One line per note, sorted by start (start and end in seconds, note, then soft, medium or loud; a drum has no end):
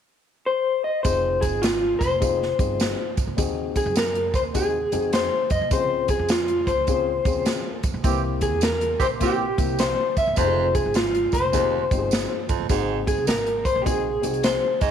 0.46 0.84 C5 loud
0.84 1.03 D#5 medium
1.03 1.54 F1 medium
1.03 1.68 C4 medium
1.03 1.68 D#4 medium
1.03 1.68 F4 medium
1.03 1.68 G#4 medium
1.03 1.43 C5 medium
1.03 kick medium
1.03 closed hi-hat medium
1.03 tambourine medium
1.41 1.63 G#4 medium
1.41 kick medium
1.41 closed hi-hat medium
1.41 tambourine medium
1.54 1.95 G#1 medium
1.62 2.02 F4 medium
1.62 snare loud
1.62 closed hi-hat medium
1.62 tambourine loud
1.99 2.52 F1 medium
1.99 3.13 C5 medium
1.99 kick medium
1.99 closed hi-hat medium
1.99 tambourine medium
2.20 2.41 C4 medium
2.20 2.41 D#4 medium
2.20 2.41 F4 medium
2.20 2.42 G#4 medium
2.20 kick medium
2.20 closed hi-hat medium
2.20 tambourine medium
2.42 snare soft
2.58 2.93 G1 medium
2.58 3.02 C4 medium
2.58 3.02 D#4 medium
2.58 3.02 F4 medium
2.58 3.03 G#4 medium
2.58 kick medium
2.58 closed hi-hat medium
2.58 tambourine medium
2.80 snare loud
2.80 closed hi-hat medium
2.80 tambourine medium
3.17 3.27 G#1 medium
3.17 kick loud
3.17 closed hi-hat medium
3.17 tambourine medium
3.27 3.37 C#2 medium
3.37 3.80 D#2 medium
3.37 4.01 C4 medium
3.37 4.01 D#4 medium
3.37 4.01 F#4 medium
3.37 4.01 G#4 medium
3.37 kick medium
3.37 closed hi-hat medium
3.37 tambourine medium
3.76 3.97 G#4 medium
3.76 kick medium
3.76 closed hi-hat medium
3.76 tambourine medium
3.86 4.34 F#2 loud
3.96 4.36 A#4 medium
3.96 snare loud
3.96 closed hi-hat medium
3.96 tambourine loud
4.15 closed hi-hat medium
4.34 4.84 D#2 medium
4.34 4.41 C5 medium
4.34 kick medium
4.34 closed hi-hat medium
4.34 tambourine medium
4.54 4.74 C4 medium
4.54 4.75 D#4 medium
4.54 4.75 F#4 medium
4.54 4.75 G#4 medium
4.54 5.10 G#4 medium
4.54 kick medium
4.54 closed hi-hat medium
4.54 tambourine medium
4.92 5.27 F2 medium
4.92 5.35 C4 medium
4.92 5.35 D#4 medium
4.92 5.36 F#4 medium
4.92 5.36 G#4 medium
4.92 closed hi-hat medium
4.92 tambourine medium
5.13 5.51 C5 medium
5.13 snare loud
5.13 closed hi-hat medium
5.13 tambourine medium
5.50 5.60 F#2 medium
5.50 5.72 D#5 medium
5.50 kick medium
5.50 closed hi-hat medium
5.50 tambourine medium
5.61 5.70 C2 medium
5.71 6.13 C#2 medium
5.71 6.34 C4 medium
5.71 6.34 C#4 medium
5.71 6.35 F4 medium
5.71 6.35 G#4 medium
5.71 6.07 C5 medium
5.71 kick loud
5.71 closed hi-hat medium
5.71 tambourine medium
6.08 6.31 G#4 medium
6.08 kick medium
6.08 closed hi-hat medium
6.08 tambourine medium
6.19 6.61 F2 medium
6.29 6.69 F4 medium
6.29 snare loud
6.29 closed hi-hat medium
6.29 tambourine loud
6.48 closed hi-hat soft
6.67 7.18 C#2 medium
6.67 7.80 C5 medium
6.67 kick medium
6.67 closed hi-hat medium
6.67 tambourine soft
6.87 7.08 C4 medium
6.87 7.08 C#4 medium
6.87 7.08 F4 medium
6.87 7.09 G#4 medium
6.87 kick medium
6.87 closed hi-hat medium
6.87 tambourine medium
7.25 7.60 D#2 medium
7.25 7.68 C4 medium
7.25 7.69 C#4 medium
7.25 7.69 F4 medium
7.25 7.69 G#4 medium
7.25 kick medium
7.25 closed hi-hat medium
7.25 tambourine medium
7.45 snare loud
7.45 closed hi-hat medium
7.45 tambourine medium
7.83 7.93 F2 medium
7.83 kick medium
7.83 closed hi-hat medium
7.83 tambourine soft
7.94 8.03 A#1 medium
8.04 8.53 C2 medium
8.04 8.20 E3 medium
8.04 8.67 A#3 medium
8.04 8.67 C4 medium
8.04 8.20 C4 medium
8.04 8.67 E4 medium
8.04 8.20 G4 medium
8.04 8.68 G4 medium
8.04 kick loud
8.04 closed hi-hat medium
8.04 tambourine medium
8.41 8.62 G#4 medium
8.41 kick medium
8.41 closed hi-hat medium
8.41 tambourine medium
8.53 8.94 E2 medium
8.61 9.02 A#4 medium
8.61 snare loud
8.61 closed hi-hat medium
8.61 tambourine loud
8.81 closed hi-hat soft
9.00 9.50 A#1 medium
9.00 9.07 E3 medium
9.00 9.07 C4 medium
9.00 9.06 G4 medium
9.00 9.07 C5 medium
9.00 kick medium
9.00 closed hi-hat medium
9.00 tambourine medium
9.19 9.45 E3 medium
9.19 9.40 A#3 medium
9.19 9.40 C4 medium
9.19 9.45 C4 medium
9.19 9.41 E4 medium
9.19 9.41 G4 medium
9.19 9.45 G4 medium
9.19 9.81 G4 medium
9.19 kick medium
9.19 closed hi-hat medium
9.19 tambourine medium
9.57 9.92 C2 medium
9.57 10.01 A#3 medium
9.57 10.01 C4 medium
9.57 10.01 E4 medium
9.57 10.02 G4 medium
9.57 kick medium
9.57 closed hi-hat medium
9.57 tambourine medium
9.79 10.14 C5 medium
9.79 snare loud
9.79 closed hi-hat medium
9.79 tambourine medium
10.17 10.26 C#2 medium
10.17 10.37 E5 medium
10.17 kick medium
10.17 closed hi-hat medium
10.17 tambourine medium
10.27 10.36 G1 medium
10.36 10.78 F1 medium
10.36 10.67 F2 medium
10.36 11.00 C4 medium
10.36 11.00 D#4 medium
10.36 11.00 F4 medium
10.36 10.46 G4 medium
10.36 10.73 C5 medium
10.36 kick medium
10.36 closed hi-hat medium
10.36 tambourine medium
10.45 11.04 G#4 medium
10.75 10.94 G#4 medium
10.75 kick medium
10.75 closed hi-hat medium
10.75 tambourine medium
10.86 11.27 G#1 medium
10.94 11.34 F4 medium
10.94 snare loud
10.94 closed hi-hat medium
10.94 tambourine loud
11.14 closed hi-hat soft
11.32 11.83 F1 medium
11.32 12.45 C5 medium
11.32 kick medium
11.32 closed hi-hat medium
11.32 tambourine soft
11.52 11.83 D#2 medium
11.52 11.73 C4 medium
11.52 11.73 D#4 medium
11.52 11.74 F4 medium
11.52 11.74 G#4 medium
11.52 kick medium
11.52 closed hi-hat medium
11.52 tambourine medium
11.90 12.25 G1 medium
11.90 12.34 C4 medium
11.90 12.34 D#4 medium
11.90 12.34 F4 medium
11.90 11.96 G4 medium
11.90 kick medium
11.90 closed hi-hat medium
11.90 tambourine soft
11.98 12.38 G#4 medium
12.11 snare loud
12.11 closed hi-hat medium
12.11 tambourine loud
12.49 12.58 G#1 medium
12.49 12.65 F2 medium
12.49 kick medium
12.49 closed hi-hat medium
12.49 tambourine medium
12.60 12.69 G1 medium
12.69 13.11 G#1 medium
12.69 12.99 G#2 medium
12.69 13.32 C4 medium
12.69 13.32 D#4 medium
12.69 13.33 F#4 medium
12.69 13.33 G#4 medium
12.69 kick medium
12.69 closed hi-hat medium
12.69 tambourine medium
13.07 13.27 G#4 medium
13.07 kick medium
13.07 closed hi-hat medium
13.07 tambourine medium
13.18 13.27 C2 medium
13.27 13.69 G#1 medium
13.27 13.66 A#4 medium
13.27 snare loud
13.27 closed hi-hat medium
13.27 tambourine loud
13.46 closed hi-hat soft
13.65 13.81 C5 medium
13.65 kick medium
13.65 closed hi-hat medium
13.65 tambourine soft
13.76 14.17 A#1 medium
13.82 14.05 C4 medium
13.82 14.05 D#4 medium
13.82 13.85 G4 medium
13.86 14.06 F#4 medium
13.86 14.46 G#4 loud
13.86 14.06 G#4 medium
13.86 kick medium
13.86 closed hi-hat medium
13.86 tambourine medium
14.22 14.57 C2 medium
14.22 14.65 C4 medium
14.22 14.66 D#4 medium
14.22 14.66 F#4 medium
14.22 14.66 G#4 medium
14.22 closed hi-hat medium
14.22 tambourine medium
14.34 closed hi-hat soft
14.43 14.81 C5 loud
14.43 snare loud
14.43 closed hi-hat medium
14.43 tambourine medium
14.81 14.90 G#1 medium
14.81 14.91 G#2 medium
14.81 14.91 D#5 medium
14.81 kick medium
14.81 closed hi-hat medium
14.81 tambourine medium